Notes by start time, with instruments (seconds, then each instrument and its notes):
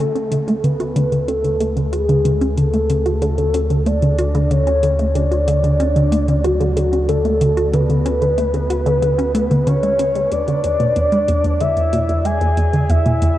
0.00 sub bass D2, synth arpeggio sound D3, soft synth lead A4
0.15 synth arpeggio sound C#4, closed hi-hat
0.32 synth arpeggio sound D3, closed hi-hat
0.48 synth arpeggio sound A3, closed hi-hat, high conga
0.64 synth arpeggio sound D3, soft synth lead B4, closed hi-hat
0.80 synth arpeggio sound F#4, closed hi-hat
0.96 synth arpeggio sound D3, closed hi-hat
1.12 synth arpeggio sound D3, closed hi-hat
1.28 synth arpeggio sound C#4, soft synth lead A4, closed hi-hat
1.44 synth arpeggio sound D3, closed hi-hat
1.61 synth arpeggio sound A3, closed hi-hat, high conga
1.77 synth arpeggio sound D3, closed hi-hat
1.86 soft synth lead A4
1.93 synth arpeggio sound F#4, soft synth lead G#4, closed hi-hat
2.09 synth arpeggio sound D3, closed hi-hat
2.25 synth arpeggio sound D3, closed hi-hat
2.41 synth arpeggio sound C#4, closed hi-hat
2.57 synth arpeggio sound D3, soft synth lead A4, closed hi-hat
2.73 synth arpeggio sound A3, closed hi-hat, high conga
2.90 synth arpeggio sound D3, closed hi-hat
3.06 synth arpeggio sound F#4, closed hi-hat
3.22 synth arpeggio sound D3, closed hi-hat
3.38 synth arpeggio sound D3, closed hi-hat
3.54 synth arpeggio sound C#4, closed hi-hat
3.70 synth arpeggio sound D3, closed hi-hat
3.86 synth arpeggio sound A3, soft synth lead D5, closed hi-hat, high conga
4.02 synth arpeggio sound D3, closed hi-hat
4.19 synth arpeggio sound F#4, closed hi-hat
4.35 synth arpeggio sound D3, closed hi-hat
4.51 synth arpeggio sound D3, soft synth lead C#5, closed hi-hat
4.67 synth arpeggio sound C#4, closed hi-hat
4.83 synth arpeggio sound D3, closed hi-hat
4.99 synth arpeggio sound A3, closed hi-hat, high conga
5.15 synth arpeggio sound D3, soft synth lead D5, closed hi-hat
5.31 synth arpeggio sound F#4, closed hi-hat
5.48 synth arpeggio sound D3, closed hi-hat
5.64 synth arpeggio sound D3, closed hi-hat
5.80 synth arpeggio sound C#4, closed hi-hat
5.96 synth arpeggio sound D3, closed hi-hat
6.12 synth arpeggio sound A3, closed hi-hat, high conga
6.28 synth arpeggio sound D3, closed hi-hat
6.44 synth arpeggio sound F#4, soft synth lead F#4, closed hi-hat
6.60 synth arpeggio sound D3, closed hi-hat
6.77 synth arpeggio sound D3, closed hi-hat
6.93 synth arpeggio sound C#4, closed hi-hat
7.09 synth arpeggio sound D3, soft synth lead A4, closed hi-hat
7.25 synth arpeggio sound A3, closed hi-hat, high conga
7.41 synth arpeggio sound D3, closed hi-hat
7.57 synth arpeggio sound F#4, closed hi-hat
7.73 synth arpeggio sound D3, soft synth lead B4, closed hi-hat
7.90 synth arpeggio sound D3, closed hi-hat
8.06 synth arpeggio sound C#4, closed hi-hat
8.22 synth arpeggio sound D3, closed hi-hat
8.38 synth arpeggio sound A3, closed hi-hat, high conga
8.54 synth arpeggio sound D3, closed hi-hat
8.70 synth arpeggio sound F#4, closed hi-hat
8.86 synth arpeggio sound D3, closed hi-hat
9.02 synth arpeggio sound D3, closed hi-hat
9.19 synth arpeggio sound C#4, closed hi-hat
9.35 synth arpeggio sound A3, closed hi-hat
9.51 synth arpeggio sound D3, closed hi-hat, high conga
9.67 synth arpeggio sound D3, soft synth lead C#5, closed hi-hat
9.83 synth arpeggio sound G#3, closed hi-hat
9.99 synth arpeggio sound C#4, closed hi-hat
10.15 synth arpeggio sound G#3, closed hi-hat
10.32 sub bass E2, synth arpeggio sound E2, soft synth lead D5, closed hi-hat
10.48 synth arpeggio sound D3, closed hi-hat
10.64 synth arpeggio sound E2, closed hi-hat
10.80 synth arpeggio sound B2, closed hi-hat, high conga
10.96 synth arpeggio sound E2, closed hi-hat
11.12 synth arpeggio sound G#3, closed hi-hat
11.28 synth arpeggio sound E2, closed hi-hat
11.44 synth arpeggio sound E2, closed hi-hat
11.60 synth arpeggio sound D3, soft synth lead E5, closed hi-hat
11.77 synth arpeggio sound E2, closed hi-hat
11.93 synth arpeggio sound B2, closed hi-hat, high conga
12.09 synth arpeggio sound E2, closed hi-hat
12.25 synth arpeggio sound G#3, soft synth lead G#5, closed hi-hat
12.41 synth arpeggio sound E2, closed hi-hat
12.57 synth arpeggio sound E2, closed hi-hat
12.73 synth arpeggio sound D3, closed hi-hat
12.90 synth arpeggio sound E2, soft synth lead E5, closed hi-hat
13.06 synth arpeggio sound B2, closed hi-hat, high conga
13.22 synth arpeggio sound E2, closed hi-hat